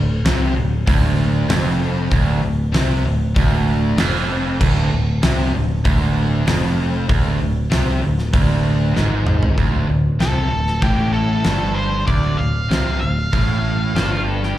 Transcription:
Already playing: picked electric bass D1, distorted electric guitar D2
0.25 picked electric bass C2, distorted electric guitar C3, snare, open hi-hat
0.56 picked electric bass D1, distorted electric guitar D2
0.87 picked electric bass D1, distorted electric guitar D2, kick, open hi-hat
1.48 picked electric bass F1, distorted electric guitar F2, snare, open hi-hat
2.10 picked electric bass D1, distorted electric guitar D2, kick, open hi-hat
2.42 picked electric bass D1, distorted electric guitar D2
2.72 picked electric bass C2, distorted electric guitar C3, snare, open hi-hat
3.04 picked electric bass D1, distorted electric guitar D2
3.35 distorted electric guitar D2, kick, open hi-hat
3.97 picked electric bass F1, distorted electric guitar F2, snare, open hi-hat
4.60 picked electric bass D1, distorted electric guitar D2, kick, crash
4.91 picked electric bass D1, distorted electric guitar D2
5.23 picked electric bass C2, distorted electric guitar C3, snare, open hi-hat
5.53 picked electric bass D1, distorted electric guitar D2
5.85 picked electric bass D1, distorted electric guitar D2, kick, open hi-hat
6.46 picked electric bass F1, distorted electric guitar F2, snare, open hi-hat
7.09 picked electric bass D1, distorted electric guitar D2, kick, open hi-hat
7.40 picked electric bass D1, distorted electric guitar D2
7.70 picked electric bass C2, distorted electric guitar C3, snare, open hi-hat
8.02 picked electric bass D1, distorted electric guitar D2
8.19 snare
8.33 picked electric bass D1, distorted electric guitar D2, kick, open hi-hat
8.95 picked electric bass G#1, distorted electric guitar G#2, snare
9.27 mid tom
9.43 floor tom
9.58 picked electric bass D1, distorted electric guitar D2, kick, open hi-hat
9.88 picked electric bass D1, distorted electric guitar D2
10.20 picked electric bass C2, distorted electric guitar C3, lead electric guitar A4, snare, open hi-hat
10.51 picked electric bass D1, distorted electric guitar D2
10.67 snare
10.81 picked electric bass A1, distorted electric guitar A2, lead electric guitar G4, kick, open hi-hat
11.13 lead electric guitar A4
11.44 picked electric bass G1, distorted electric guitar G2, snare, open hi-hat
11.75 lead electric guitar C5
12.05 picked electric bass D1, distorted electric guitar D2, lead electric guitar D5, kick, open hi-hat
12.37 picked electric bass D1, distorted electric guitar D2, lead electric guitar F5
12.69 picked electric bass C2, distorted electric guitar C3, snare, open hi-hat
13.00 picked electric bass D1, distorted electric guitar D2, lead electric guitar F5
13.33 picked electric bass A1, distorted electric guitar A2, kick, open hi-hat
13.95 picked electric bass G1, distorted electric guitar G2, lead electric guitar A4, snare, open hi-hat
14.12 lead electric guitar F4
14.28 lead electric guitar A4
14.43 lead electric guitar G4, snare

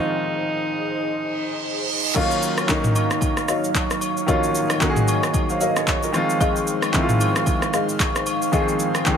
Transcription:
Already playing: grand piano D#3 F3 G#3 C4 F4, alto saxophone D#4, analog synth pad D#4 G#4 C5 D#5
1.10 reverse cymbal
2.14 grand piano D#3 F#3 A#3 C#4 F4, analog synth pad F#3 D#4 C#5 F5, marimba F#4 C#5 D#5 F5, kick, crash, high agogo, shaker
2.31 shaker
2.42 shaker
2.58 cross-stick, high agogo, shaker
2.67 grand piano D#3 F#3 A#3 C#4 D#4, kick, clap, shaker
2.84 mid tom, shaker
2.96 high agogo, shaker
3.11 cross-stick, shaker
3.21 kick, high agogo, shaker
3.37 cross-stick, shaker
3.48 marimba F#4 C#5 D#5 F5, cross-stick, shaker
3.64 shaker
3.75 kick, clap, high agogo, shaker
3.91 cross-stick, shaker
4.01 high agogo, shaker
4.17 shaker
4.26 grand piano D#3 F3 A#3 C#4 F4, marimba F#4 C#5 D#5 F5, analog synth pad D#5, kick, high agogo, shaker
4.34 grand piano F#3
4.43 shaker
4.55 shaker
4.70 cross-stick, high agogo, shaker
4.80 grand piano D#3 F#3 A#3 C#4 F#4, kick, clap, shaker
4.90 grand piano G#4
4.96 mid tom, shaker
5.08 high agogo, shaker
5.23 cross-stick, shaker
5.34 kick, high agogo, shaker
5.50 grand piano C5 F5, shaker
5.61 marimba F#4 C#5 D#5 F5, grand piano A#4 D#5, shaker
5.76 grand piano G#4 C#5, cross-stick, shaker
5.87 kick, clap, high agogo, shaker
6.03 grand piano F4 A#4, shaker
6.13 grand piano D#3 F3 G#3 C4 F4, analog synth pad G#3 D#4 C5 F5, cross-stick, high agogo, shaker
6.30 shaker
6.41 marimba G#4 D#5 F5, kick, high agogo, shaker
6.56 shaker
6.67 shaker
6.82 cross-stick, high agogo, shaker
6.92 grand piano D#3 F3 G#3 C4 E4, kick, clap, shaker
7.02 grand piano F4
7.09 mid tom, shaker
7.21 high agogo, shaker
7.36 cross-stick, shaker
7.46 kick, high agogo, shaker
7.62 cross-stick, shaker
7.73 marimba G#4 D#5 F5, cross-stick, shaker
7.89 shaker
8.00 kick, clap, high agogo, shaker
8.16 cross-stick, shaker
8.26 high agogo, shaker
8.42 shaker
8.52 grand piano D#3 F3 G#3 C4 G#4, marimba G#4 D#5 F5, kick, high agogo, shaker
8.68 shaker
8.79 shaker
8.95 cross-stick, high agogo, shaker
9.05 grand piano D#3 F3 G#3 C4 G4, kick, clap, shaker

